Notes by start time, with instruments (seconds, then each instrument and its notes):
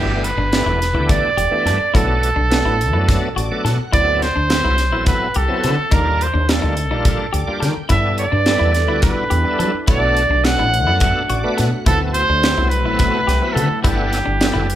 Already playing: fretless electric bass G1, tonewheel organ E3 A3 B3 D4 G4, trumpet G4
0.24 trumpet B4, closed hi-hat
0.37 fretless electric bass G1, clean electric guitar D4
0.53 tonewheel organ E3 A3 B3 D4 G4, snare, closed hi-hat
0.66 fretless electric bass E1, clean electric guitar E4
0.82 snare, closed hi-hat
0.93 fretless electric bass D2, tonewheel organ E3 A3 B3 D4 G4, clean electric guitar E4
1.09 trumpet D5, kick, closed hi-hat
1.37 fretless electric bass E1, clean electric guitar G4, closed hi-hat
1.51 tonewheel organ E3 A3 B3 D4 G4
1.65 fretless electric bass G2, clean electric guitar A4, snare, closed hi-hat
1.79 muted fretless electric bass stroke
1.94 fretless electric bass B1, tonewheel organ F#3 A3 B3 D4 A4, clean electric guitar E4, trumpet A4, kick, closed hi-hat
2.23 closed hi-hat
2.36 fretless electric bass B1, clean electric guitar D4
2.50 tonewheel organ F#3 A3 B3 D4 B4, snare, closed hi-hat
2.64 fretless electric bass A1, clean electric guitar E4
2.81 closed hi-hat
2.93 fretless electric bass F#2, tonewheel organ F#3 A3 B3 D4 A4, clean electric guitar E4
3.09 kick, snare, closed hi-hat
3.36 fretless electric bass A1, clean electric guitar F#4, tonewheel organ D5, closed hi-hat
3.51 tonewheel organ F#3 A3 B3 D4 A4, muted fretless electric bass stroke
3.65 fretless electric bass B2, clean electric guitar A4, tonewheel organ F#5, snare, closed hi-hat
3.79 muted fretless electric bass stroke
3.92 fretless electric bass D2, tonewheel organ F#3 B3 C4 E4 A4, clean electric guitar E4, trumpet D5, kick, closed hi-hat
4.22 trumpet C5, snare, closed hi-hat
4.36 fretless electric bass D2, clean electric guitar D4
4.49 tonewheel organ F#3 B3 C4 E4 A4, snare, closed hi-hat
4.65 fretless electric bass C2, clean electric guitar E4
4.78 snare, closed hi-hat
4.92 fretless electric bass A1, tonewheel organ F#3 B3 C4 E4 A4, clean electric guitar E4
5.06 trumpet B4, kick, snare, closed hi-hat
5.34 fretless electric bass C2, clean electric guitar G4, trumpet A4, closed hi-hat
5.48 tonewheel organ F#3 B3 C4 E4 A4
5.64 fretless electric bass D3, clean electric guitar A4, snare, closed hi-hat
5.78 muted fretless electric bass stroke
5.91 fretless electric bass D#2, tonewheel organ G3 A#3 D4 F4 A4, clean electric guitar D#4, trumpet A#4, kick, closed hi-hat
6.21 trumpet C5, closed hi-hat
6.34 fretless electric bass D#2, clean electric guitar D4
6.49 tonewheel organ G3 A#3 D4 F4 A4, trumpet A4, snare, closed hi-hat
6.62 fretless electric bass D2, clean electric guitar D#4
6.77 closed hi-hat
6.91 fretless electric bass A#1, tonewheel organ G3 A#3 D4 F4 A4, clean electric guitar D#4
7.05 kick, closed hi-hat
7.33 fretless electric bass D2, clean electric guitar G4, tonewheel organ D5, closed hi-hat
7.47 tonewheel organ G3 A#3 D4 F4 G4, muted fretless electric bass stroke
7.60 fretless electric bass D#3, clean electric guitar A4, tonewheel organ G5, snare, closed hi-hat
7.77 muted fretless electric bass stroke
7.89 fretless electric bass G2, tonewheel organ G3 B3 D4 E4 A4, analog synth pad G3 D4 E4 A4 B4, clean electric guitar E4, trumpet E5, kick, closed hi-hat
8.18 trumpet D5, closed hi-hat
8.32 fretless electric bass G2, clean electric guitar D4
8.46 tonewheel organ G3 B3 D4 E4 A4, snare, closed hi-hat
8.59 fretless electric bass E2, clean electric guitar E4
8.74 snare, closed hi-hat
8.87 fretless electric bass D2, tonewheel organ G3 B3 D4 E4 F#4, clean electric guitar E4
9.02 trumpet B4, kick, snare, closed hi-hat
9.30 fretless electric bass E2, clean electric guitar G4, closed hi-hat
9.44 tonewheel organ G3 B3 D4 E4 A4, muted fretless electric bass stroke
9.59 fretless electric bass G3, clean electric guitar A4, closed hi-hat
9.74 muted fretless electric bass stroke
9.86 fretless electric bass B1, analog synth pad F#3 A3, tonewheel organ A3 B3 D4 F#4 A4, clean electric guitar E4, trumpet D5, kick, closed hi-hat
10.17 closed hi-hat
10.29 fretless electric bass B1, clean electric guitar D4
10.43 tonewheel organ A3 B3 D4 F#4 A4, trumpet F#5, snare, closed hi-hat
10.59 fretless electric bass A1, clean electric guitar E4
10.74 closed hi-hat
10.87 fretless electric bass F#2, tonewheel organ A3 B3 D4 F#4 A4, clean electric guitar E4
11.00 kick, closed hi-hat
11.29 fretless electric bass A1, clean electric guitar F#4, tonewheel organ D5, closed hi-hat
11.43 tonewheel organ A3 B3 D4 F#4 B4
11.58 fretless electric bass B2, clean electric guitar A4, tonewheel organ F#5, snare, closed hi-hat
11.73 muted fretless electric bass stroke
11.85 fretless electric bass D2, analog synth pad C3 D3 A3 E4 F#5, tonewheel organ B3 C4 E4 F#4 A4, clean electric guitar E4, trumpet A4, kick, closed hi-hat
12.14 trumpet C5, closed hi-hat
12.29 fretless electric bass D2, clean electric guitar D4
12.43 tonewheel organ B3 C4 E4 F#4 A4, snare, closed hi-hat
12.58 fretless electric bass C2, clean electric guitar E4
12.69 trumpet B4, closed hi-hat
12.85 fretless electric bass A1, tonewheel organ B3 C4 E4 F#4 A4, clean electric guitar E4
12.99 kick, snare, closed hi-hat
13.27 fretless electric bass C2, clean electric guitar G4, snare, closed hi-hat
13.42 tonewheel organ B3 C4 E4 F#4 B4, muted fretless electric bass stroke
13.53 fretless electric bass D3, trumpet A4, clean electric guitar A4
13.57 closed hi-hat
13.70 muted fretless electric bass stroke
13.82 fretless electric bass G1, analog synth pad G3 D4 A4 B4, tonewheel organ B3 D4 E4 A4 F#5, clean electric guitar E4, trumpet G4, kick, closed hi-hat
14.13 snare, closed hi-hat
14.26 fretless electric bass G1, clean electric guitar D4
14.40 tonewheel organ B3 D4 E4 F#4 A4, snare, closed hi-hat
14.54 fretless electric bass F#1, clean electric guitar E4
14.70 closed hi-hat